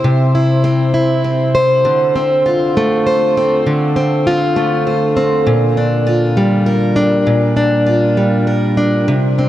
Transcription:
0.00 0.64 C4 medium
0.00 0.34 E4 medium
0.00 1.54 C5 medium
0.04 1.86 C3 medium
0.35 0.93 E4 medium
0.64 1.24 C4 medium
0.94 1.91 E4 medium
1.24 2.15 C4 medium
1.55 3.06 C5 medium
1.85 3.66 D3 medium
2.15 3.36 C4 medium
2.46 4.26 F4 medium
2.77 4.55 A3 medium
3.07 4.85 C5 medium
3.37 3.95 C4 medium
3.67 7.17 D3 medium
3.96 5.15 C4 medium
4.27 6.06 F4 medium
4.56 5.52 A3 medium
4.87 5.52 C5 medium
5.16 5.52 C4 medium
5.47 7.25 A#2 medium
5.77 6.95 D4 medium
6.07 7.85 F4 medium
6.37 8.17 G3 medium
6.66 8.47 A#4 medium
6.96 7.55 D4 medium
7.27 9.08 A#2 medium
7.57 8.76 D4 medium
7.87 9.14 F4 medium
8.17 9.49 G3 medium
8.47 9.42 A#4 medium
8.77 9.14 D4 medium
9.08 9.49 C3 medium
9.39 9.49 C4 medium

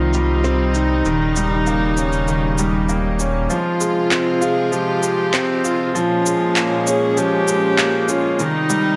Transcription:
0.00 1.02 C2 medium
0.00 1.03 C3 medium
0.00 1.06 D#3 medium
0.00 0.14 G3 medium
0.00 3.46 G3 medium
0.00 0.44 C4 medium
0.00 0.76 D#4 medium
0.00 3.46 D#4 medium
0.00 0.76 F4 medium
0.13 0.43 G3 medium
0.13 shaker medium
0.44 0.73 C4 medium
0.44 shaker soft
0.74 3.20 D#4 medium
0.74 1.04 D#4 medium
0.74 shaker soft
1.05 3.47 D#1 medium
1.05 3.48 C#3 medium
1.05 1.35 D#3 medium
1.05 shaker soft
1.36 1.66 G3 medium
1.36 shaker medium
1.67 1.96 A#3 medium
1.67 shaker soft
1.97 2.27 C#4 medium
1.97 shaker soft
2.13 shaker soft
2.28 2.57 D#3 medium
2.28 shaker soft
2.58 2.76 G3 medium
2.58 shaker medium
2.89 3.18 A#3 medium
2.89 shaker soft
3.19 3.37 C#4 medium
3.19 shaker soft
3.50 5.93 C3 medium
3.50 3.79 F3 medium
3.50 5.93 G#3 medium
3.50 4.44 F4 medium
3.50 5.93 F4 medium
3.50 shaker soft
3.80 3.98 G#3 medium
3.80 shaker medium
4.11 4.40 C4 medium
4.11 clap medium
4.11 shaker soft
4.41 4.59 F4 medium
4.41 4.74 G#4 medium
4.41 shaker soft
4.72 5.02 F3 medium
4.72 5.67 G4 medium
4.72 shaker soft
5.03 5.32 G#3 medium
5.03 shaker medium
5.34 5.63 C4 medium
5.34 clap medium
5.34 shaker soft
5.64 5.93 F4 medium
5.64 5.95 F4 medium
5.64 shaker medium
5.95 8.38 A#2 medium
5.95 6.24 F3 medium
5.95 8.38 G#3 medium
5.95 8.38 C#4 medium
5.95 6.89 F4 medium
5.95 shaker soft
6.26 6.55 G#3 medium
6.26 shaker medium
6.56 6.86 A#3 medium
6.56 clap medium
6.56 shaker soft
6.87 7.16 C#4 medium
6.87 7.19 G#4 medium
6.87 shaker medium
7.17 7.46 F3 medium
7.17 8.11 G4 loud
7.17 shaker soft
7.48 7.66 G#3 medium
7.48 shaker medium
7.78 8.08 A#3 medium
7.78 clap medium
7.78 shaker soft
8.08 8.27 C#4 medium
8.08 8.42 F4 medium
8.08 shaker medium
8.39 8.96 C3 medium
8.39 8.69 D#3 medium
8.39 8.96 G3 medium
8.39 8.96 D#4 medium
8.39 shaker soft
8.70 8.96 G3 medium
8.70 shaker medium

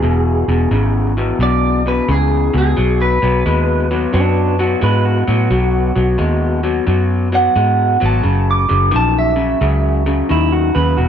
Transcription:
0.00 0.43 E1 medium
0.00 0.44 E2 medium
0.00 0.44 B2 medium
0.00 0.90 G#4 medium
0.48 0.68 E1 medium
0.48 0.69 E2 medium
0.48 0.69 B2 medium
0.71 1.31 G#1 medium
0.71 1.12 E2 medium
0.71 1.12 C#3 medium
1.17 1.38 E2 medium
1.17 1.38 B2 medium
1.39 1.99 B1 loud
1.39 1.81 E2 medium
1.39 1.81 B2 loud
1.39 1.85 D5 medium
1.86 2.06 E2 medium
1.86 2.07 B2 medium
1.86 2.09 B4 medium
2.08 2.48 C#2 loud
2.08 2.49 E2 medium
2.08 2.49 C#3 loud
2.08 2.54 G#4 medium
2.54 2.74 C#2 medium
2.54 2.74 E2 medium
2.54 2.74 B2 medium
2.58 3.00 G#4 medium
2.77 3.17 B1 loud
2.77 3.18 B2 medium
2.77 3.18 F#3 medium
3.02 5.02 B4 medium
3.22 3.43 B1 medium
3.22 3.43 B2 medium
3.22 3.43 F#3 medium
3.46 4.06 D#2 medium
3.46 3.86 B2 medium
3.46 3.87 G#3 medium
3.91 4.11 B2 medium
3.91 4.12 F#3 medium
4.13 4.74 F#2 medium
4.13 4.54 B2 medium
4.13 4.55 F#3 loud
4.13 4.58 D4 medium
4.59 4.80 B2 medium
4.59 4.80 F#3 medium
4.59 4.82 F#4 medium
4.81 5.22 G#2 loud
4.81 5.23 B2 medium
4.81 5.23 G#3 medium
4.81 5.05 B4 medium
5.05 7.06 F#4 medium
5.28 5.48 A2 medium
5.28 5.48 B2 medium
5.28 5.48 F#3 medium
5.51 5.91 B1 loud
5.51 5.91 B2 medium
5.51 5.92 F#3 medium
5.96 6.16 B1 loud
5.96 6.16 B2 medium
5.96 6.17 F#3 medium
6.18 6.79 D#2 medium
6.18 6.59 B2 medium
6.18 6.60 G#3 medium
6.63 6.84 B2 medium
6.63 6.85 F#3 medium
6.87 7.47 F#2 medium
6.87 7.28 B2 medium
6.87 7.28 F#3 medium
7.32 7.53 B2 medium
7.32 7.53 F#3 medium
7.32 8.00 F#5 medium
7.56 7.96 G#2 medium
7.56 7.97 B2 medium
7.56 7.97 G#3 medium
8.00 8.22 G#1 medium
8.00 8.21 B2 medium
8.00 8.22 F#3 medium
8.06 8.48 A5 medium
8.23 8.64 F#1 medium
8.23 8.65 F#2 medium
8.23 8.65 C#3 medium
8.51 8.93 D6 medium
8.69 8.90 F#1 medium
8.69 8.90 F#2 medium
8.69 8.90 C#3 medium
8.91 9.54 A#1 medium
8.91 9.33 F#2 medium
8.91 9.33 D#3 medium
8.96 9.16 A5 medium
9.19 10.50 E5 medium
9.36 9.58 F#2 medium
9.36 9.58 C#3 medium
9.61 10.21 C#2 loud
9.61 10.02 F#2 medium
9.61 10.02 C#3 loud
10.06 10.27 F#2 medium
10.06 10.27 C#3 medium
10.29 10.70 D#2 medium
10.29 10.70 F#2 medium
10.29 10.70 D#3 loud
10.29 10.52 E4 medium
10.52 10.74 F#4 medium
10.75 10.95 D#2 medium
10.75 10.95 F#2 medium
10.75 10.96 C#3 medium
10.75 10.97 B4 medium
10.97 11.08 E1 medium
10.97 11.08 E2 medium
10.97 11.08 B2 medium
10.97 11.08 F#4 medium

